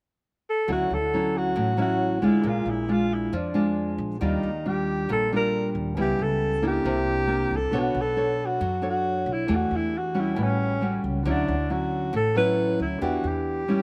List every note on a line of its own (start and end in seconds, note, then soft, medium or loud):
0.50 0.68 A4 medium
0.67 0.88 D2 medium
0.67 1.54 D3 soft
0.67 0.96 F#3 soft
0.67 0.96 C#4 soft
0.67 0.97 E4 medium
0.67 1.75 F#4 soft
0.67 1.76 C#5 soft
0.71 0.96 F#4 medium
0.71 1.77 E5 soft
0.90 1.52 D2 medium
0.90 1.39 A4 medium
1.14 1.75 F#3 soft
1.14 1.75 C#4 soft
1.14 1.76 E4 medium
1.38 1.80 F#4 medium
1.56 2.18 A1 medium
1.56 2.42 A2 soft
1.77 2.18 F#3 medium
1.77 2.18 C#4 medium
1.77 2.19 E4 medium
1.77 2.44 F#4 soft
1.77 2.45 C#5 soft
1.77 2.45 E5 soft
1.81 2.27 F#4 medium
2.22 2.42 D2 medium
2.22 2.85 G#3 medium
2.22 2.85 D4 medium
2.22 2.85 F4 medium
2.26 2.50 E4 medium
2.41 2.65 A#1 medium
2.41 3.30 A#2 soft
2.41 4.16 D4 soft
2.41 4.17 G#4 soft
2.41 4.17 A#4 soft
2.47 2.71 F4 medium
2.47 4.19 F5 soft
2.65 3.28 A#1 medium
2.70 2.94 E4 medium
2.88 3.32 G#3 soft
2.88 3.32 D4 soft
2.88 3.32 F4 soft
2.88 3.15 F4 medium
3.14 3.38 E4 medium
3.32 3.95 F2 medium
3.32 4.19 F3 soft
3.32 4.00 D4 medium
3.54 4.17 G#3 medium
3.54 4.17 D4 medium
3.54 4.17 F4 medium
3.98 4.19 A#1 medium
4.19 4.41 D#2 medium
4.19 5.07 D#3 soft
4.19 4.49 G3 soft
4.19 4.50 D4 soft
4.19 4.50 F4 medium
4.19 5.28 G4 soft
4.19 5.29 D5 soft
4.19 5.30 F5 soft
4.25 4.69 D#4 medium
4.43 5.05 D#2 medium
4.66 5.28 G3 soft
4.66 5.28 D4 soft
4.66 5.28 F4 soft
4.66 5.10 G4 medium
5.09 5.71 A#1 medium
5.09 5.95 A#2 soft
5.09 5.31 A4 medium
5.30 5.94 G3 medium
5.30 5.94 D4 medium
5.30 5.95 F4 medium
5.30 5.95 G4 soft
5.30 5.98 D5 soft
5.30 5.98 G5 soft
5.36 5.75 A#4 medium
5.75 5.95 D#2 medium
5.95 6.17 C#2 medium
5.95 6.83 C#3 soft
5.95 6.59 G3 soft
5.95 6.60 B3 soft
5.95 6.82 C#4 soft
5.95 6.60 E4 medium
5.95 6.83 G4 soft
5.95 6.84 B4 soft
6.00 6.24 G4 medium
6.00 6.85 E5 soft
6.19 6.81 C#2 medium
6.19 6.65 A4 loud
6.62 7.25 A#3 soft
6.62 7.26 D4 medium
6.62 7.26 E4 medium
6.67 7.58 G4 medium
6.83 7.47 C2 medium
6.83 7.71 C3 soft
6.83 7.69 D4 soft
6.83 7.72 A#4 soft
6.83 7.73 C5 soft
6.89 7.73 E5 soft
7.27 7.57 A#3 soft
7.27 7.57 D4 soft
7.27 7.57 E4 medium
7.51 7.71 C2 medium
7.56 7.80 A4 medium
7.71 7.93 B1 medium
7.71 8.59 B3 soft
7.71 9.45 D4 soft
7.71 8.02 D4 soft
7.71 8.02 A4 soft
7.71 9.46 B4 soft
7.71 8.02 C#5 medium
7.75 8.03 F#4 medium
7.75 9.47 C#5 soft
7.75 9.48 A5 soft
7.95 8.57 B1 medium
8.01 8.47 A4 loud
8.17 8.61 D4 soft
8.17 8.61 A4 medium
8.17 8.61 C#5 soft
8.46 8.87 F#4 medium
8.61 9.23 F#2 medium
8.61 9.47 F#3 soft
8.82 9.45 D4 medium
8.82 9.45 A4 medium
8.82 9.46 C#5 medium
8.90 9.35 F#4 medium
9.26 9.47 B1 medium
9.33 9.57 E4 medium
9.47 9.70 E2 medium
9.47 10.35 E3 soft
9.47 9.93 A3 medium
9.47 10.35 D4 soft
9.47 9.93 D4 soft
9.47 10.36 G4 soft
9.47 9.93 G4 medium
9.47 10.37 A4 soft
9.52 9.78 F#4 medium
9.52 10.37 F#5 soft
9.71 10.33 E2 medium
9.76 9.99 E4 medium
9.98 10.22 F#4 medium
10.15 10.78 G3 soft
10.15 10.78 C#4 medium
10.15 10.78 F#4 medium
10.21 10.44 E4 medium
10.35 11.00 A1 medium
10.35 11.23 A2 soft
10.35 11.22 C#4 soft
10.39 11.06 C#4 medium
10.39 11.25 B4 soft
10.39 11.25 F#5 medium
10.81 11.22 G3 medium
10.81 11.23 C#4 medium
10.81 11.23 F#4 medium
11.04 11.24 C#2 medium
11.23 11.46 D2 medium
11.23 12.12 D3 medium
11.23 11.54 F#3 soft
11.23 11.54 C#4 medium
11.23 12.32 D4 soft
11.23 11.55 E4 medium
11.23 12.33 F#4 soft
11.27 11.73 D4 medium
11.27 12.34 C#5 soft
11.27 12.35 E5 soft
11.48 12.10 D2 medium
11.70 12.14 F#3 soft
11.70 12.14 C#4 soft
11.70 12.14 E4 medium
11.70 12.15 F#4 medium
12.13 12.76 A1 medium
12.13 12.99 A2 soft
12.13 12.36 A4 medium
12.35 12.98 F#3 medium
12.35 12.98 C#4 medium
12.35 12.99 E4 medium
12.35 13.01 F#4 soft
12.35 12.78 B4 medium
12.35 13.02 C#5 soft
12.35 13.02 E5 soft
12.80 13.00 D2 medium
12.80 13.05 E4 medium
12.98 13.22 E2 medium
12.98 13.68 E3 medium
12.98 13.64 B3 soft
12.98 13.82 D4 soft
12.98 13.64 D4 medium
12.98 13.82 G4 soft
12.98 13.64 G4 medium
12.98 13.82 B4 soft
13.03 13.29 F#4 medium
13.03 13.82 E5 soft
13.24 13.82 E2 medium
13.24 13.82 G4 medium
13.68 13.82 G3 medium
13.68 13.82 C#4 medium
13.68 13.82 E4 medium